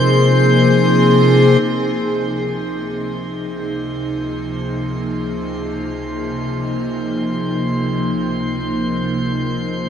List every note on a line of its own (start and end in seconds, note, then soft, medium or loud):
0.00 9.89 C3 medium
0.00 9.89 F3 medium
0.00 9.89 A#3 medium
0.00 9.89 D#4 medium
0.00 9.89 G#4 medium
0.00 1.61 C5 medium
0.00 1.60 C6 medium
1.61 9.89 C#2 medium
1.61 9.89 C5 medium
1.61 9.89 C6 medium